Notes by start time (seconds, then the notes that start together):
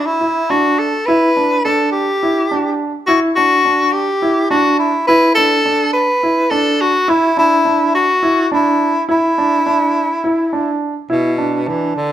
0.06 E4
0.21 E4
0.50 D4 F#4
0.79 A4
1.06 E4 B4
1.37 D4
1.65 D4 A4
1.92 G4
2.23 E4
2.51 D4
3.07 E4 F#4
3.36 D4 F#4
3.65 D4
3.93 G4
4.22 E4
4.50 D4 F#4
4.79 E4
5.07 E4 B4
5.35 D4 A4
5.65 D4
5.93 B4
6.23 E4
6.51 D4 A4
6.81 F#4
7.08 E4
7.37 D4 E4
7.65 D4
7.95 F#4
8.23 E4
8.52 D4 E4
9.09 E4
9.38 D4
9.66 D4
10.24 E4
10.53 D4
11.10 B2 E4
11.38 D4
11.66 E3 D4
11.96 D3